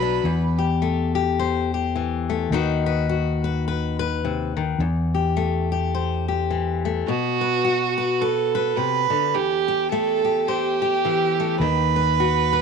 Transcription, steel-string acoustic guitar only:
Already playing: B2 F#3 F#4 B4
0.02 D4
0.25 E2
0.58 G4
0.82 A3
1.15 G4
1.39 C5
1.74 G4
1.96 E3
2.29 A3
2.52 D#3 D#4 F#4 B4
2.86 B4
3.09 F#4
3.44 B4
3.68 B4
3.99 B4
4.25 C3
4.57 D#3
4.80 E2
5.14 G4
5.37 A3
5.72 G4
5.94 C5
6.28 G4
6.50 E3
6.85 A3
7.08 B2
7.41 B4
7.64 F#4
7.98 B4
8.21 B4
8.55 B4
8.77 C3
9.10 D3
9.35 E2
9.68 G4
9.92 A3
10.25 G4
10.48 C5
10.82 G4
11.05 E3
11.40 A3
11.61 D#3
11.96 B4
12.20 F#4
12.53 B4

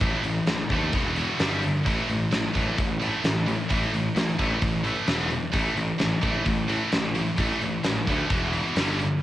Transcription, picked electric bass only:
0.02 A1
0.25 A1
0.48 A1
0.70 D#2
0.94 E1
1.40 G1
1.86 A1
2.09 A1
2.33 A1
2.56 A1
2.79 A1
3.24 A1
3.71 A1
3.93 A1
4.16 A1
4.39 A1
4.62 A1
5.08 E1
5.54 A1
5.76 A1
6.00 A1
6.23 A1
6.47 A1
6.93 A1
7.38 A1
7.62 A1
7.85 A1
8.08 D2
8.31 E1
8.76 G1

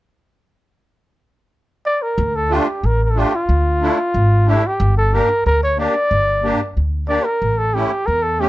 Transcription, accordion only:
2.49 A3 D4 F4
3.16 A3 D4 F4
3.81 A3 D4 E4
4.46 A3 D4 G4
5.12 A#3 D4 G4
5.77 A#3 D4 G4
6.43 A#3 D4 G4
7.08 A#3 D4 G4
7.74 A3 C#4 E4
8.39 A3 C#4 G4

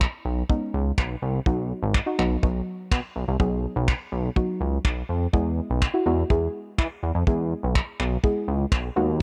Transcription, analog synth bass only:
0.25 B1
0.74 C#2
0.98 B1
1.22 C2
1.46 B1
1.83 G#1
2.19 B1
2.43 B1
2.91 B2
3.16 B1
3.28 C2
3.40 B1
3.76 B1
4.12 B1
4.61 C#2
4.85 B1
5.09 F2
5.33 E2
5.70 B1
6.06 E2
6.30 E2
6.78 E3
7.03 E2
7.15 F2
7.27 E2
7.63 B1
7.99 B1
8.48 C#2
8.72 B1
8.96 D#2

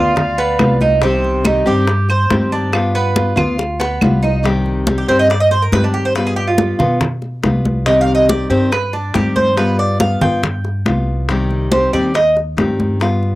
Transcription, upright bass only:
Already playing: D2
0.59 C2
1.66 G2
2.30 G2
3.37 D2
4.01 C2
5.08 G2
5.72 G2
6.79 B2
7.43 C2
8.50 G2
9.15 G2
10.21 G2
10.85 C2
11.93 D#2
12.57 G2

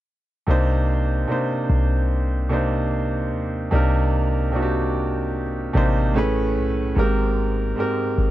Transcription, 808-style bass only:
0.48 C2
1.70 C2
3.32 D#2
3.72 C2
5.75 A1
6.56 B1
6.97 G#1
8.18 G#1

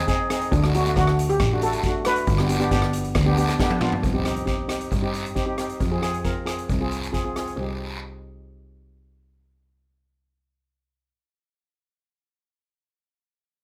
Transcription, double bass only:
0.52 D2
0.96 D2
1.40 A1
2.27 G1
2.71 G1
3.15 D2
4.03 C2
4.92 G2
5.80 F2
6.70 C2
7.57 C2

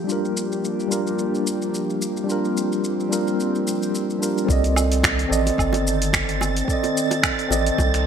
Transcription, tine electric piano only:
0.04 G3 D4
0.09 F4 A#4
0.88 G3 D4 F4
0.92 A#4
2.24 G3 D4
2.29 F4 A#4
3.09 G3 D4 F4
3.13 A#4
4.19 G3 D4 F4 A#4
4.45 C4 A4
4.50 D5 D#5
5.29 C4 A4 D5 D#5
6.65 C4 A4
6.70 D5 D#5
7.48 C4 A4 D5 D#5

